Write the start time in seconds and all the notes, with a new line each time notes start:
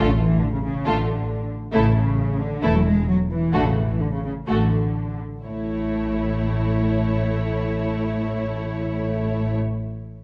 Already playing: A3 F4
0.00 A1 A4
0.08 C#3
0.19 E3
0.41 D3
0.53 C#3
0.64 C#3
0.85 A1 D3 A3 F4 A4
1.72 A1 C#3 A3 E4 A4
1.95 C#3
2.40 D3
2.62 E1 E3 A3 E4 A4
2.75 F#3
2.85 G#3
3.09 F#3
3.31 E3
3.53 A1 D3 A3 F#4 A4
3.66 C#3
3.78 E3
4.01 D3
4.13 C#3
4.25 C#3
4.47 A1 D3 A3 F#4 A4
5.45 A1 A2 A3 E4 C#5